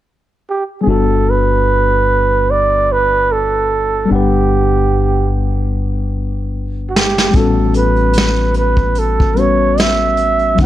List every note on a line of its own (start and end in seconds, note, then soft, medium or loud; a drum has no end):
0.50 0.64 G4 medium
0.81 4.04 G3 medium
0.81 4.05 B3 soft
0.81 0.91 G#4 medium
0.86 4.07 G1 medium
0.86 4.06 D4 soft
0.86 4.07 F#4 soft
0.86 1.32 A4 medium
0.91 4.08 A4 medium
1.30 2.52 B4 medium
2.51 2.94 D5 medium
2.92 3.33 B4 medium
3.32 4.11 A4 medium
4.05 7.28 G3 medium
4.05 7.29 B3 soft
4.10 7.31 G1 medium
4.10 7.30 D4 soft
4.10 5.29 G4 medium
4.10 7.32 F#5 soft
4.15 7.33 B4 medium
6.89 6.97 F#4 soft
6.96 7.38 G4 medium
6.96 snare medium
7.18 snare medium
7.31 10.55 A1 medium
7.31 9.31 G3 medium
7.31 9.32 B3 soft
7.31 kick medium
7.31 closed hi-hat medium
7.35 9.33 C#4 soft
7.35 9.34 F#4 medium
7.35 7.76 A4 medium
7.40 9.36 A4 medium
7.74 8.53 B4 medium
7.74 closed hi-hat soft
7.96 closed hi-hat soft
8.13 closed hi-hat medium
8.18 snare medium
8.54 9.00 B4 medium
8.54 closed hi-hat medium
8.77 kick medium
8.77 closed hi-hat soft
8.95 9.41 A4 medium
8.95 closed hi-hat medium
9.20 kick medium
9.35 10.57 G3 soft
9.35 10.58 B3 soft
9.35 10.59 C#4 soft
9.35 10.59 F#4 soft
9.35 closed hi-hat medium
9.39 10.60 B4 soft
9.39 9.82 C#5 medium
9.78 10.60 E5 medium
9.78 snare medium
9.78 closed hi-hat medium
10.17 closed hi-hat medium
10.39 closed hi-hat soft
10.55 10.66 F#3 medium
10.55 10.66 C4 soft
10.55 closed hi-hat medium
10.59 10.66 D2 medium
10.59 10.66 D4 soft
10.59 10.66 E4 medium
10.59 10.66 F#5 medium
10.59 kick medium